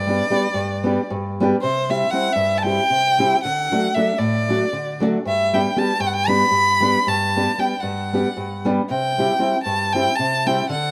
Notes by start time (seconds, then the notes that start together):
Already playing: G2 D5
0.07 G3 B3 D4 G4
0.30 G3 B3 D4 G4
0.54 G2
0.84 G3 B3 D4 G4
1.10 G2
1.40 G3 B3 D4 G4
1.62 C3 C5
1.89 G3 C4 E4 G4 E5
2.11 G3 C4 E4 G4 F#5
2.33 G2 E5
2.58 A5
2.63 G3 C4 E4 G4 G5
2.90 C3
3.18 G3 C4 E4 G4
3.43 D3 F#5
3.72 F#3 A3 D4 F#4
3.94 F#3 A3 D4 F#4 E5
4.18 A2 D5
4.49 F#3 A3 D4 F#4
4.73 D3
5.00 F#3 A3 D4 F#4
5.25 G2 E5
5.53 G3 B3 D4 G4 G5
5.76 G3 B3 D4 G4 A5
5.99 G2 G5
6.07 F#5
6.13 G5
6.28 G3 B3 D4 G4 B5
6.51 G2
6.80 G3 B3 D4 G4
7.07 G2 A5
7.36 G3 B3 D4 G4
7.58 G3 B3 D4 G4 G5
7.80 G2 F#5
8.13 G3 B3 D4 G4
8.37 G2
8.65 G3 B3 D4 G4
8.90 C3 G5
9.18 G3 C4 E4 G4
9.39 G3 C4 E4 G4
9.63 G2 A5
9.93 G3 C4 E4 G4 G5
10.16 C3 A5
10.46 G3 C4 E4 G4 G5
10.69 D3 F#5